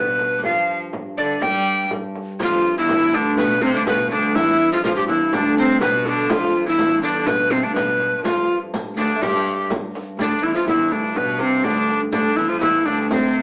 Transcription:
Already playing: harmonium G2, viola da gamba B2, lute B3, recorder B4
0.19 frame drum
0.38 viola da gamba G3
0.43 viola da gamba F3, lute F4, recorder F5, frame drum
0.68 frame drum
0.93 frame drum
1.18 viola da gamba D3, lute D4, recorder D5, frame drum
1.41 viola da gamba G3, lute G4, recorder G5, frame drum
1.67 frame drum
1.91 frame drum
2.15 frame drum
2.39 viola da gamba F2, harmonium G2, lute F3, recorder F4, riq, frame drum
2.65 frame drum
2.77 viola da gamba E2, lute E3, recorder E4
2.89 riq, frame drum
3.13 viola da gamba D2, lute D3, recorder D4, frame drum
3.37 lute B2, viola da gamba B2, recorder B4, riq, frame drum
3.57 lute D3
3.62 lute C3, viola da gamba C3, recorder C4, frame drum
3.74 viola da gamba D2, lute D3, recorder D4
3.87 lute B2, viola da gamba B2, recorder B4, riq, frame drum
4.11 viola da gamba D2, lute D3, recorder D4, frame drum
4.35 viola da gamba E2, lute E3, recorder E4, riq, frame drum
4.59 frame drum
4.72 viola da gamba F2, lute F3, recorder F4
4.84 viola da gamba F2, lute F3, recorder F4, riq, frame drum
4.96 viola da gamba G2, recorder G4
5.08 viola da gamba E2, lute E3, recorder E4, frame drum
5.33 viola da gamba D2, lute D3, recorder D4, riq, frame drum
5.58 lute C3, recorder C4
5.80 viola da gamba B2, lute B2, recorder B4, riq, frame drum
6.05 lute D3, recorder D4, frame drum
6.30 viola da gamba F2, harmonium G2, lute F3, recorder F4, riq, frame drum
6.66 viola da gamba E2, lute E3, recorder E4
6.79 riq, frame drum
7.03 lute D3, recorder D4, frame drum
7.26 lute B2, viola da gamba B2, recorder B4, riq, frame drum
7.51 lute C3, recorder C4, frame drum
7.63 viola da gamba D2, lute D3, recorder D4
7.73 viola da gamba B2, lute B2, recorder B4, riq, frame drum
8.00 frame drum
8.17 viola da gamba G2
8.23 viola da gamba F2, lute F3, recorder F4, riq, frame drum
8.50 frame drum
8.74 riq, frame drum
8.95 viola da gamba D2, lute D3, recorder D4, frame drum
9.16 lute A3
9.20 viola da gamba G2, lute G3, recorder G4, riq, frame drum
9.47 riq
9.70 riq, frame drum
9.95 riq, frame drum
10.17 viola da gamba D2, harmonium G2, lute D3, recorder D4, frame drum
10.42 viola da gamba E2, lute E3, recorder E4
10.54 viola da gamba F2, lute F3, recorder F4
10.64 viola da gamba E2, lute E3, recorder E4, frame drum
10.91 viola da gamba D2, recorder D4, frame drum
11.15 lute B2, viola da gamba B2, recorder B4, frame drum
11.38 lute C3, viola da gamba C3, recorder C4
11.63 viola da gamba D2, lute D3, recorder D4, frame drum
11.88 frame drum
12.12 viola da gamba D2, lute D3, recorder D4, frame drum
12.36 viola da gamba E2, lute E3, recorder E4
12.48 viola da gamba F2, lute F3, recorder F4
12.60 viola da gamba E2, lute E3, recorder E4, frame drum
12.85 viola da gamba D2, lute D3, recorder D4, frame drum
13.09 viola da gamba C3, lute C3, recorder C4, frame drum
13.35 frame drum

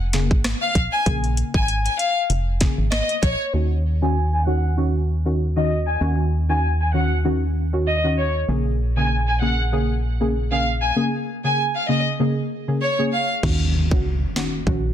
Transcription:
Already playing: fm bass F1
0.13 synth stab C#3 A#3 G#4, snare, closed hi-hat
0.31 fm bass G#1, kick
0.44 cross-stick, snare, closed hi-hat
0.62 violin section F5
0.75 fm bass A#1, kick, closed hi-hat
0.92 violin section G#5
1.06 fm bass A#1, synth stab C#3 A#3 G#4, kick, closed hi-hat
1.24 closed hi-hat
1.37 closed hi-hat
1.54 fm bass G#1, violin section G#5, kick
1.68 closed hi-hat
1.85 violin section G#5, closed hi-hat
1.99 violin section F5, closed hi-hat
2.30 fm bass F1, closed hi-hat
2.60 synth stab C#3 A#3 G#4, kick, snare, closed hi-hat
2.78 fm bass G#1
2.92 violin section D#5, cross-stick, snare, closed hi-hat
3.09 closed hi-hat
3.23 fm bass A#1, violin section C#5, kick, closed hi-hat
3.53 fm bass D#2, synth stab D#3 C#4 F#4
4.01 synth stab D#3 C#4 F#4, violin section G#5
4.33 violin section G#5
4.46 synth stab D#3 C#4 F#4, violin section F#5
4.77 synth stab D#3 C#4 F#4
5.25 synth stab D#3 C#4 F#4
5.56 synth stab D#3 C#4 F#4, violin section D#5
5.87 violin section G#5
6.01 fm bass D#2, synth stab D#3 C#4 F#4
6.49 synth stab D#3 C#4 F#4, violin section G#5
6.80 violin section G#5
6.93 synth stab D#3 C#4 F#4, violin section F#5
7.24 synth stab D#3 C#4 F#4
7.73 synth stab D#3 C#4 F#4
7.87 violin section D#5
8.04 synth stab D#3 C#4 F#4
8.17 violin section C#5
8.48 fm bass A#1, synth stab C#3 A#3 G#4
8.96 synth stab C#3 A#3 G#4, violin section G#5
9.27 violin section G#5
9.41 synth stab C#3 A#3 G#4, violin section F#5
9.72 synth stab C#3 A#3 G#4
10.20 synth stab C#3 A#3 G#4
10.51 synth stab C#3 A#3 G#4, violin section F5
10.82 violin section G#5
10.95 synth stab C#3 A#3 G#4
11.44 synth stab C#3 A#3 G#4, violin section G#5
11.75 violin section F5
11.88 synth stab C#3 A#3 G#4, violin section D#5
12.19 synth stab C#3 A#3 G#4
12.68 synth stab C#3 A#3 G#4
12.82 violin section C#5
12.98 synth stab C#3 A#3 G#4
13.12 violin section F5
13.43 fm bass D#2, synth stab D#3 C#4 F#4, kick, crash, impact
13.91 fm bass C#2, synth stab D#3 C#4 F#4, kick
14.36 synth stab D#3 C#4 F#4, snare
14.67 fm bass A#1, synth stab D#3 C#4 F#4, kick

